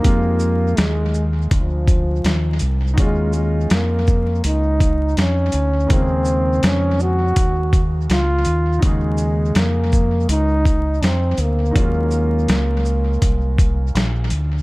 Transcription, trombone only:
X:1
M:4/4
L:1/8
Q:"Swing 16ths" 1/4=82
K:Ebdor
V:1 name="Trombone"
B,2 A, z F,3 z | A, A, B,2 E2 D2 | C2 D G2 z F2 | A,2 B,2 E2 C B,- |
B,6 z2 |]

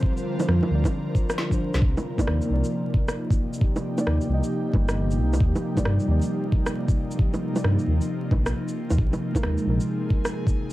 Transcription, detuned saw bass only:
X:1
M:4/4
L:1/16
Q:"Swing 16ths" 1/4=134
K:Cm
V:1 name="Detuned saw bass" clef=bass
z4 F,, z D,, z8 C,, | C,, z3 E,, z C,, z8 z | z4 E,, z C,, z3 G,,, G,,,3 C,,2 | E,, z3 G,, z E,, z8 z |
z4 G,, z E,, z3 B,,, B,,, z3 E,, | B,,, z3 E,, z B,,, z8 z |]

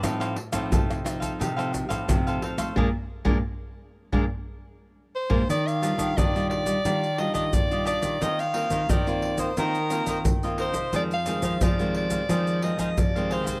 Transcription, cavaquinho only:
X:1
M:4/4
L:1/16
Q:1/4=88
K:Eb
V:1 name="Cavaquinho"
[E=Acf] [Acf] z [Acf] [EAcf]3 [Acf] [EAcf] [Acf] z [Acf]2 [Acf] [EAcf] [Acf] | [ABd] z2 [ABd] z4 [ABd] z6 [ABd] | [Gde]2 [DGde] [DGde] [DGde] [Gde]2 [Gde] [Gd]2 [DGde] [DGde] z [Gde] [DGde] [Gde] | [EBce]2 [EBce] [EBce] [EBce] [Bc]2 [Bce] [EBce]2 [EBce] [EBce] z [Bce] [EBce] [Bce] |
[EAcf]2 [EAcf] [EAcf] [EAcf] [Acf]2 [Acf] [EAcf]2 [EAcf] [EAcf] z [Acf] [EAcf] [Acf] |]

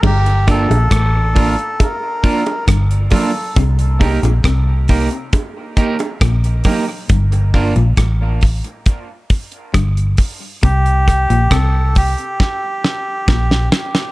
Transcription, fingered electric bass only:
X:1
M:4/4
L:1/16
Q:1/4=68
K:Gm
V:1 name="Fingered electric bass" clef=bass
G,,,3 B,,, A,,,3 z4 z G,,,2 z2 | C,,3 B,,, C,,3 z4 z B,,,2 z2 | G,,,3 B,,, A,,,3 z4 z G,,,2 z2 | C,,3 B,,, C,,3 z4 z B,,,2 z2 |]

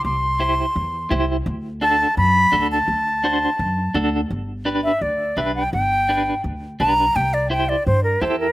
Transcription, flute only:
X:1
M:4/4
L:1/8
Q:1/4=169
K:G
V:1 name="Flute"
c'6- c' z | z2 a2 b3 a- | a6- a z | z3 e d2 e g |
g4 z2 _b2 | g d g d c _B c B |]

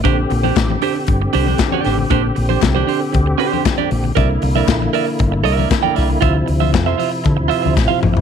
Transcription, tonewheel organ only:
X:1
M:4/4
L:1/8
Q:1/4=117
K:Bblyd
V:1 name="Tonewheel organ"
G8- | G8 | E8- | E8 |]
V:2 name="Tonewheel organ" clef=bass
[D,C]8- | [D,C]8 | [D,B,]8 | [C,F,]8 |]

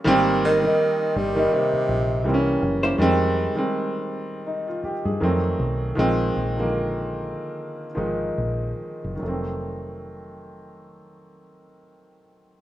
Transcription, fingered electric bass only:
X:1
M:4/4
L:1/16
Q:"Swing 16ths" 1/4=78
K:Fm
V:1 name="Fingered electric bass" clef=bass
A,,,4 z2 G,,,2 z2 B,,,2 C,,2 _G,,,2 | F,,3 z8 G,, F,,2 =B,,,2 | B,,,2 B,,,4- B,,, z3 A,,,2 B,,,2 z _G,,, | F,,,16 |]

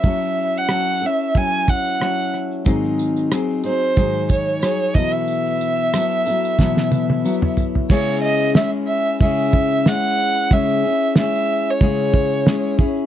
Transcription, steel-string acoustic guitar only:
X:1
M:4/4
L:1/8
Q:"Swing 16ths" 1/4=92
K:C#m
V:1 name="Steel-string acoustic guitar"
[F,CEA]2 [F,CEA] [CEA] [F,CEA]2 [F,CEA]2 | [G,,D,F,^B,DG]2 [F,B,DG] [F,B,DG] [G,,D,F,DG]2 [F,DG] [=B,,E,F,=B,EA]- | [B,,E,F,B,EA]2 [F,B,EA] [F,B,EA] [B,,E,F,B,EA]2 [F,B,EA]2 | [C,G,CEG]2 [G,CEG]2 [C,G,CEG]2 [G,CEG]2 |
[C,G,CEG] [CEG] [G,CEG]2 [C,G,CEG]2 [G,CEG] [CEG] |]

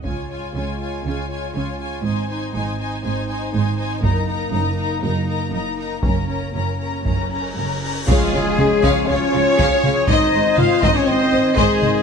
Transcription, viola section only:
X:1
M:4/4
L:1/8
Q:1/4=120
K:Db
V:1 name="Viola section"
F F F F F F F F | E E E E E E E E | E E E E E E E E | D D D D D D D D |
F2 A2 F2 A2 | c4 e2 c2 |]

